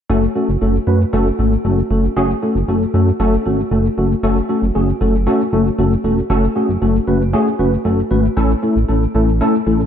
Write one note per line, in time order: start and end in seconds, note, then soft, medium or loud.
0.09 0.28 F#1 loud
0.09 0.23 A3 loud
0.09 0.23 C#4 medium
0.09 0.23 F#4 medium
0.09 0.23 A4 loud
0.35 0.49 A3 medium
0.35 0.49 C#4 medium
0.35 0.49 F#4 medium
0.35 0.49 A4 medium
0.48 0.57 F#1 medium
0.61 0.80 F#1 loud
0.61 0.75 A3 medium
0.61 0.75 C#4 medium
0.61 0.75 F#4 medium
0.61 0.75 A4 medium
0.87 1.05 F#2 loud
0.87 1.01 A3 medium
0.87 1.01 C#4 medium
0.87 1.01 F#4 medium
0.87 1.01 B4 medium
1.13 1.31 F#1 medium
1.13 1.26 A3 loud
1.13 1.26 C#4 medium
1.13 1.26 F#4 medium
1.13 1.27 A4 loud
1.39 1.57 G#1 medium
1.39 1.52 A3 medium
1.39 1.52 C#4 medium
1.39 1.52 F#4 medium
1.39 1.52 A4 medium
1.65 1.83 F#1 loud
1.65 1.78 A3 medium
1.65 1.78 C#4 medium
1.65 1.78 F#4 medium
1.65 1.78 A4 medium
1.91 2.09 F#1 loud
1.91 2.04 A3 medium
1.91 2.04 C#4 medium
1.91 2.04 F#4 medium
1.91 2.04 A4 medium
2.17 2.35 F#1 loud
2.17 2.30 A3 loud
2.17 2.30 C#4 loud
2.17 2.30 F#4 loud
2.17 2.30 G#4 loud
2.43 2.56 A3 medium
2.43 2.56 C#4 medium
2.43 2.56 F#4 medium
2.43 2.56 A4 medium
2.55 2.64 F#1 medium
2.68 2.86 F#1 medium
2.68 2.82 A3 medium
2.68 2.82 C#4 medium
2.68 2.82 F#4 medium
2.68 2.82 A4 medium
2.94 3.12 F#2 medium
2.94 3.08 A3 medium
2.94 3.08 C#4 medium
2.94 3.08 F#4 medium
2.94 3.08 A4 medium
3.20 3.38 F#1 loud
3.20 3.33 A3 loud
3.20 3.33 C#4 medium
3.20 3.33 F#4 medium
3.20 3.33 A4 loud
3.46 3.64 G#1 medium
3.46 3.59 A3 medium
3.46 3.59 C#4 medium
3.46 3.59 F#4 medium
3.46 3.59 A4 medium
3.71 3.90 F#1 loud
3.71 3.85 A3 medium
3.71 3.85 C#4 medium
3.71 3.85 F#4 medium
3.71 3.85 A4 medium
3.97 4.16 F#1 medium
3.97 4.11 A3 medium
3.97 4.11 C#4 medium
3.97 4.11 F#4 medium
3.97 4.11 A4 medium
4.23 4.41 F#1 loud
4.23 4.37 A3 loud
4.23 4.37 C#4 loud
4.23 4.37 F#4 loud
4.23 4.37 A4 loud
4.49 4.63 A3 medium
4.49 4.63 C#4 medium
4.49 4.63 F#4 medium
4.49 4.63 A4 medium
4.62 4.71 F#1 loud
4.75 4.93 F#1 medium
4.75 4.89 A3 medium
4.75 4.89 C#4 medium
4.75 4.89 F#4 medium
4.75 4.89 G#4 medium
5.01 5.28 F#1 loud
5.01 5.14 A3 medium
5.01 5.14 C#4 medium
5.01 5.14 F#4 medium
5.01 5.14 A4 medium
5.27 5.40 A3 loud
5.27 5.40 C#4 medium
5.27 5.40 F#4 medium
5.27 5.40 A4 loud
5.52 5.71 F#1 loud
5.52 5.66 A3 medium
5.52 5.66 C#4 medium
5.52 5.66 F#4 medium
5.52 5.66 A4 medium
5.78 5.97 F#1 loud
5.78 5.92 A3 medium
5.78 5.92 C#4 medium
5.78 5.92 F#4 medium
5.78 5.92 A4 medium
6.04 6.22 E1 medium
6.04 6.18 A3 medium
6.04 6.18 C#4 medium
6.04 6.18 F#4 medium
6.04 6.18 A4 medium
6.30 6.48 F#1 loud
6.30 6.44 A3 loud
6.30 6.44 C#4 loud
6.30 6.44 F#4 loud
6.30 6.44 A4 loud
6.56 6.69 A3 medium
6.56 6.69 C#4 medium
6.56 6.69 F#4 medium
6.56 6.69 G#4 medium
6.69 6.78 F#1 medium
6.82 7.00 F#1 loud
6.82 6.95 A3 medium
6.82 6.95 C#4 medium
6.82 6.95 F#4 medium
6.82 6.95 A4 medium
7.07 7.35 F#1 loud
7.07 7.21 A3 medium
7.07 7.21 C#4 medium
7.07 7.21 F#4 medium
7.07 7.21 B4 medium
7.33 7.47 A3 loud
7.33 7.47 C#4 medium
7.33 7.47 F#4 medium
7.33 7.47 G#4 loud
7.59 7.78 F#1 loud
7.59 7.73 A3 medium
7.59 7.73 C#4 medium
7.59 7.73 F#4 medium
7.59 7.73 B4 medium
7.85 8.03 F#1 loud
7.85 7.99 A3 medium
7.85 7.99 C#4 medium
7.85 7.99 F#4 medium
7.85 7.99 A4 medium
8.11 8.29 G#1 medium
8.11 8.25 A3 medium
8.11 8.25 C#4 medium
8.11 8.25 F#4 medium
8.11 8.25 B4 medium
8.37 8.55 A1 loud
8.37 8.50 A3 loud
8.37 8.51 C#4 loud
8.37 8.51 E4 loud
8.37 8.51 A4 loud
8.63 8.76 A3 medium
8.63 8.76 C#4 medium
8.63 8.76 E4 medium
8.63 8.76 A4 medium
8.76 8.85 A1 loud
8.88 9.07 A1 loud
8.88 9.02 A3 medium
8.88 9.02 C#4 medium
8.88 9.02 E4 medium
8.88 9.02 A4 medium
9.15 9.42 A1 medium
9.15 9.28 A3 medium
9.15 9.28 C#4 medium
9.15 9.28 E4 medium
9.15 9.28 A4 medium
9.41 9.54 A3 loud
9.41 9.54 C#4 loud
9.41 9.54 E4 medium
9.41 9.54 A4 loud
9.66 9.85 A1 medium
9.66 9.80 A3 medium
9.66 9.80 C#4 medium
9.66 9.80 E4 medium
9.66 9.80 A4 medium